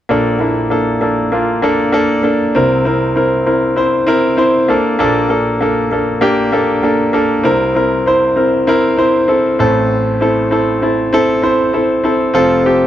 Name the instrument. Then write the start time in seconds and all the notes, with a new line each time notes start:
grand piano
0.09 A#1 A#2 A#3 D4 A4
0.39 A#3 D4 E4
0.70 A#3 D4 A4
1.01 A#3 D4 A4
1.32 A#3 D4 F4
1.62 A#3 D4 A4
1.92 A#3 D4 A4
2.23 A#3 D4 A4
2.55 C2 C3 C4 E4 A#4
2.85 C4 E4 A#4
3.16 C4 E4 A#4
3.46 C4 E4 A#4
3.76 C4 E4 C5
4.07 C4 E4 A#4
4.37 C4 E4 C5
4.68 A#3 D4 A4
4.99 A#1 A#2 A#3 D4 A4
5.29 A#3 D4 A4
5.61 A#3 D4 A4
5.92 A#3 D4 A4
6.21 A#3 D4 G4
6.52 A#3 D4 A4
6.83 A#3 D4 A4
7.13 A#3 D4 A4
7.43 C2 C3 C4 E4 A#4
7.75 C4 E4 A#4
8.06 C4 E4 C5
8.36 C4 E4 A#4
8.67 C4 E4 A#4
8.97 C4 E4 C5
9.28 C4 E4 A4
9.59 A1 A2 C4 E4 A4
10.21 C4 E4 A4
10.51 C4 E4 A4
10.82 C4 E4 A4
11.13 C4 E4 A4
11.42 C4 E4 C5
11.73 C4 E4 A4
12.04 C4 E4 A4
12.34 F1 F2 C4 F4 A4
12.64 C4 F4 G4